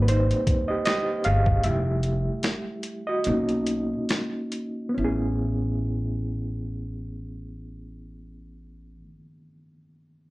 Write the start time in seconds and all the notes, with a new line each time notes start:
Already playing: G#1 G3 A#3 C4 G4 D5
0.02 B4
0.08 D#4 C5, closed hi-hat
0.31 closed hi-hat
0.47 kick, closed hi-hat
0.68 G4 D#5
0.85 G4 D#5, snare, closed hi-hat
1.24 G1 G#4 F5, closed hi-hat
1.46 kick
1.63 F1 G3 A3 E4 G4 E5, closed hi-hat
2.03 closed hi-hat
2.43 snare, closed hi-hat
2.83 closed hi-hat
3.07 F#4 D#5
3.24 B1 A#3 C#4 D#4, closed hi-hat
3.49 closed hi-hat
3.67 closed hi-hat
4.09 snare, closed hi-hat
4.52 closed hi-hat
4.89 B3
4.94 A1 C#4
4.99 E4
5.04 G#4